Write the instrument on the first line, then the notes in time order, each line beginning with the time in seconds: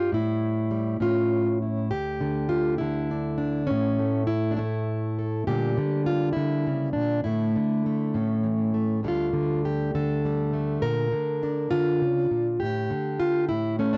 steel-string acoustic guitar
Already playing: G3 F4 G4
0.12 A2 E4
0.71 G3
1.00 A2 C#4 F4
1.62 E4
1.91 D2 G4
2.21 D3
2.49 F4
2.78 D3 E4
3.11 D4
3.38 D4
3.67 A2 C#4
3.99 A3
4.27 E4
4.51 D4
4.57 A3 E4
5.19 A4
5.47 A#2 D3 G3 A#3 G4
5.77 D3
6.06 F4
6.33 D3 E4
6.67 C#3
6.93 A#2 D4
7.24 A2 D3 A3 E4
7.56 D3
7.86 A3
8.14 A2 C#4
8.43 E3
8.74 A3
9.03 D2 D3 G3 A3
9.08 F4
9.33 D3
9.65 G4
9.95 D3 A4
10.25 G3
10.53 A3
10.82 A#2 A#4
11.12 D3
11.43 D4
11.71 D3 F4
12.02 C#3
12.31 A#2
12.60 A2 G4
12.90 D3
13.20 F4
13.49 A2 E4
13.79 A3 C#4
13.93 D4